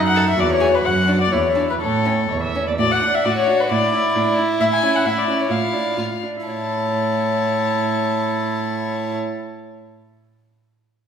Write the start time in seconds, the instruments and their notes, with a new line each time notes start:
Already playing: cello F#2, viola D#4
0.07 violin F#5
0.16 violin A4
0.29 violin E5
0.39 cello E2, viola F#4, violin D5
0.52 violin C#5
0.61 violin G#4
0.75 violin B4
0.85 cello F#2, violin F#5
1.08 violin D4
1.21 violin D5
1.32 cello E2, viola E4, violin C#5
1.55 violin D4
1.70 violin B4
1.81 cello A2, violin A4, viola C#5
2.06 violin C#4
2.30 cello E2, viola C#5
2.43 viola E5
2.55 violin C#4
2.67 viola D5
2.78 cello A2, viola F#4, violin D5
2.91 violin F#5
3.01 viola D4
3.15 violin E5
3.25 cello A2, viola F#4, violin F#4 D5
3.37 violin C#5
3.47 viola D4
3.60 violin B4
3.70 cello A2, viola D4, violin E4 D5
3.93 viola E4
4.15 cello A2, viola D4
4.38 viola E4
4.60 cello A2, viola E4, violin E5
4.73 violin G#5
4.83 viola C#4
4.96 violin F#5
5.04 cello A2, viola E4, violin E5
5.18 violin D5
5.27 viola C#4
5.40 violin C#5
5.49 cello A2, viola F4, violin F5
5.73 viola D4
5.97 cello A2, viola F4, violin F4
6.23 viola D4
6.47 cello A2, viola E4, violin C#5 A5